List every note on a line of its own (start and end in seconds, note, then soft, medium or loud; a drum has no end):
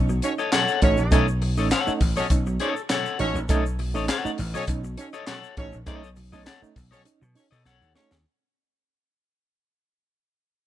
0.00 0.19 B1 loud
0.09 0.22 B2 medium
0.09 0.22 F#3 medium
0.09 muted clean electric guitar stroke soft
0.09 shaker medium
0.22 0.37 C#4 medium
0.22 0.33 C#4 medium
0.22 0.37 D#4 medium
0.22 0.33 F#4 medium
0.22 0.33 A4 medium
0.22 0.33 C#5 loud
0.22 closed hi-hat medium
0.22 shaker medium
0.38 0.51 A4 medium
0.38 0.51 C#5 medium
0.38 0.50 D#5 medium
0.38 shaker soft
0.52 0.67 B2 medium
0.52 0.67 F#3 medium
0.52 0.62 C#4 medium
0.52 0.62 F#4 medium
0.52 0.62 A4 medium
0.52 0.80 A4 loud
0.52 0.62 C#5 medium
0.52 0.80 C#5 loud
0.52 0.80 F#5 loud
0.52 snare loud
0.52 clap medium
0.52 closed hi-hat medium
0.52 shaker medium
0.68 shaker medium
0.82 0.96 A1 medium
0.82 0.96 A3 medium
0.82 0.97 C#4 medium
0.82 1.21 C#4 loud
0.82 0.97 D#4 medium
0.82 1.21 F#4 loud
0.82 1.21 A4 loud
0.82 1.21 C#5 loud
0.82 kick medium
0.82 closed hi-hat medium
0.97 1.11 A#1 medium
0.97 1.03 C#4 soft
0.97 1.03 D#4 soft
0.97 muted clean electric guitar stroke soft
0.97 shaker medium
1.11 1.58 B1 loud
1.11 1.26 A3 loud
1.11 1.26 C#4 loud
1.11 1.26 D#4 loud
1.11 1.26 A4 medium
1.11 1.26 C#5 medium
1.11 1.26 D#5 loud
1.11 kick loud
1.11 closed hi-hat loud
1.11 shaker medium
1.28 shaker medium
1.42 1.56 B2 medium
1.42 1.56 F#3 medium
1.42 muted clean electric guitar stroke soft
1.42 open hi-hat medium
1.57 1.70 A1 medium
1.57 1.70 A3 medium
1.57 1.70 C#4 medium
1.57 1.70 D#4 medium
1.57 1.68 A4 medium
1.57 1.67 C#5 medium
1.57 1.67 D#5 medium
1.57 shaker medium
1.71 1.92 A4 medium
1.71 1.92 C#5 loud
1.71 1.92 F#5 medium
1.71 snare loud
1.71 clap loud
1.71 closed hi-hat loud
1.71 shaker medium
1.87 2.00 A3 medium
1.87 2.00 C#4 medium
1.87 2.00 D#4 medium
1.87 muted slap bass stroke soft
1.87 shaker medium
2.01 2.15 A1 loud
2.01 muted clean electric guitar stroke soft
2.01 kick medium
2.01 open hi-hat medium
2.01 shaker soft
2.16 2.30 B2 medium
2.16 2.30 F#3 medium
2.16 2.25 C#4 loud
2.16 2.26 F#4 loud
2.16 2.25 A4 medium
2.16 2.27 A4 medium
2.16 2.25 C#5 loud
2.16 2.26 C#5 medium
2.16 2.26 D#5 medium
2.16 shaker medium
2.30 2.57 B1 loud
2.30 2.45 C#4 medium
2.30 2.45 D#4 medium
2.30 muted clean electric guitar stroke soft
2.30 kick loud
2.30 closed hi-hat medium
2.30 shaker medium
2.46 2.59 B2 medium
2.46 2.59 F#3 medium
2.46 muted clean electric guitar stroke medium
2.46 shaker medium
2.60 2.75 C#4 medium
2.60 2.71 C#4 medium
2.60 2.75 D#4 medium
2.60 2.71 F#4 medium
2.60 2.81 A4 medium
2.60 2.71 A4 medium
2.60 2.76 C#5 loud
2.60 2.71 C#5 medium
2.60 2.75 D#5 medium
2.60 closed hi-hat medium
2.60 shaker medium
2.76 muted clean electric guitar stroke soft
2.76 shaker soft
2.89 3.04 B2 medium
2.89 3.04 F#3 medium
2.89 3.00 C#4 medium
2.89 3.00 F#4 medium
2.89 3.00 A4 medium
2.89 3.18 A4 medium
2.89 3.00 C#5 medium
2.89 3.18 C#5 medium
2.89 3.18 F#5 medium
2.89 snare loud
2.89 clap medium
2.89 closed hi-hat medium
2.89 shaker medium
3.06 shaker soft
3.19 3.34 A1 loud
3.19 3.34 A3 medium
3.19 3.34 C#4 medium
3.19 3.39 C#4 loud
3.19 3.34 D#4 medium
3.19 3.39 F#4 loud
3.19 3.39 A4 loud
3.19 3.39 C#5 loud
3.19 closed hi-hat medium
3.35 3.48 A#1 medium
3.35 3.41 C#4 soft
3.35 3.41 D#4 soft
3.35 muted clean electric guitar stroke medium
3.35 shaker medium
3.49 3.95 B1 loud
3.49 3.64 A3 loud
3.49 3.64 C#4 medium
3.49 3.64 D#4 loud
3.49 3.63 A4 medium
3.49 3.64 C#5 medium
3.49 3.64 D#5 medium
3.49 kick loud
3.49 closed hi-hat medium
3.49 shaker medium
3.66 shaker medium
3.79 3.94 B2 medium
3.79 3.94 F#3 medium
3.79 muted clean electric guitar stroke soft
3.79 open hi-hat medium
3.94 4.07 A1 medium
3.94 4.07 A3 medium
3.94 4.08 C#4 medium
3.94 4.08 D#4 medium
3.94 4.05 A4 medium
3.94 4.05 C#5 medium
3.94 4.04 D#5 medium
3.94 shaker medium
4.08 4.29 A4 medium
4.08 4.30 C#5 medium
4.08 4.30 F#5 medium
4.08 snare loud
4.08 clap loud
4.08 closed hi-hat loud
4.08 shaker medium
4.25 4.37 A3 medium
4.25 4.38 C#4 medium
4.25 4.38 D#4 medium
4.25 muted slap bass stroke soft
4.25 shaker medium
4.38 4.53 A1 medium
4.38 muted clean electric guitar stroke soft
4.38 open hi-hat medium
4.38 shaker medium
4.54 4.67 B2 medium
4.54 4.67 F#3 medium
4.54 4.64 C#4 loud
4.54 4.64 F#4 loud
4.54 4.64 A4 loud
4.54 4.64 A4 medium
4.54 4.64 C#5 loud
4.54 4.64 C#5 medium
4.54 4.64 D#5 medium
4.54 shaker medium
4.67 4.95 B1 medium
4.67 4.83 C#4 medium
4.67 4.83 D#4 medium
4.67 muted clean electric guitar stroke soft
4.67 kick medium
4.67 closed hi-hat medium
4.67 shaker medium
4.84 4.97 B2 medium
4.84 4.97 F#3 medium
4.84 muted clean electric guitar stroke soft
4.84 shaker medium
4.97 5.12 C#4 medium
4.97 5.08 C#4 medium
4.97 5.13 D#4 medium
4.97 5.08 F#4 medium
4.97 5.08 A4 medium
4.97 5.08 C#5 medium
4.97 closed hi-hat medium
4.97 shaker medium
5.13 5.26 A4 medium
5.13 5.26 C#5 medium
5.13 5.26 D#5 medium
5.13 shaker medium
5.27 5.42 B2 medium
5.27 5.42 F#3 medium
5.27 5.38 C#4 medium
5.27 5.38 F#4 medium
5.27 5.55 A4 medium
5.27 5.38 A4 medium
5.27 5.55 C#5 medium
5.27 5.38 C#5 medium
5.27 5.56 F#5 medium
5.27 snare loud
5.27 clap medium
5.27 closed hi-hat medium
5.27 shaker medium
5.44 shaker medium
5.57 5.72 A1 loud
5.57 5.72 A3 medium
5.57 5.77 C#4 loud
5.57 5.72 C#4 medium
5.57 5.72 D#4 medium
5.57 5.77 F#4 medium
5.57 5.77 A4 loud
5.57 5.77 C#5 loud
5.57 muted clean electric guitar stroke soft
5.57 kick medium
5.57 closed hi-hat medium
5.73 5.86 A#1 medium
5.73 5.79 C#4 soft
5.73 5.79 D#4 soft
5.73 muted clean electric guitar stroke soft
5.73 shaker soft
5.86 6.27 B1 loud
5.86 6.01 A3 loud
5.86 6.02 C#4 medium
5.86 6.02 D#4 loud
5.86 6.07 A4 medium
5.86 6.08 C#5 loud
5.86 6.08 D#5 loud
5.86 kick loud
5.86 closed hi-hat medium
5.86 shaker medium
6.04 shaker medium
6.16 6.32 B2 medium
6.16 6.32 F#3 medium
6.16 muted clean electric guitar stroke soft
6.16 open hi-hat medium
6.16 shaker medium
6.32 6.45 B1 medium
6.32 6.45 A3 medium
6.32 6.46 C#4 medium
6.32 6.46 D#4 medium
6.32 6.43 A4 medium
6.32 6.42 C#5 medium
6.32 6.42 D#5 medium
6.32 shaker medium
6.46 6.60 A4 medium
6.46 6.60 C#5 medium
6.46 6.61 F#5 medium
6.46 snare loud
6.46 clap loud
6.46 closed hi-hat medium
6.46 shaker medium
6.62 6.75 A3 medium
6.62 6.75 C#4 medium
6.62 6.75 D#4 medium
6.62 muted slap bass stroke soft
6.62 shaker medium
6.76 6.91 B1 medium
6.76 muted clean electric guitar stroke soft
6.76 kick medium
6.76 open hi-hat medium
6.76 shaker medium
6.91 7.05 B2 medium
6.91 7.05 F#3 medium
6.91 7.02 C#4 loud
6.91 7.01 F#4 loud
6.91 7.02 A4 medium
6.91 7.02 A4 loud
6.91 7.01 C#5 medium
6.91 7.02 C#5 loud
6.91 7.01 D#5 medium
6.91 shaker medium
7.05 7.20 C#4 medium
7.05 7.20 D#4 medium
7.05 muted clean electric guitar stroke soft
7.05 closed hi-hat medium
7.05 shaker medium
7.22 7.35 B2 medium
7.22 7.34 B2 loud
7.22 7.35 F#3 medium
7.22 muted clean electric guitar stroke medium
7.22 shaker medium
7.35 7.50 C#4 medium
7.35 7.46 C#4 medium
7.35 7.50 D#4 medium
7.35 7.46 F#4 medium
7.35 7.46 A4 medium
7.35 7.46 C#5 medium
7.35 open hi-hat medium
7.35 shaker medium
7.51 7.64 B2 loud
7.51 7.64 A4 medium
7.51 7.64 C#5 medium
7.51 7.63 D#5 medium
7.51 shaker medium
7.65 7.80 B1 loud
7.65 7.80 B2 medium
7.65 7.80 F#3 medium
7.65 7.76 C#4 medium
7.65 7.77 F#4 medium
7.65 7.93 A4 medium
7.65 7.76 A4 medium
7.65 7.93 C#5 loud
7.65 7.76 C#5 medium
7.65 7.93 F#5 loud
7.65 snare medium
7.65 shaker medium
7.81 7.94 D#2 medium
7.81 shaker soft
7.95 8.09 A3 medium
7.95 8.10 C#4 medium
7.95 8.14 C#4 loud
7.95 8.09 D#4 medium
7.95 8.15 F#4 medium
7.95 8.15 A4 medium
7.95 8.14 C#5 loud
7.95 muted clean electric guitar stroke soft
7.95 snare medium
7.95 shaker medium
8.11 8.24 D#2 medium
8.11 muted clean electric guitar stroke soft
8.11 snare loud
8.11 shaker soft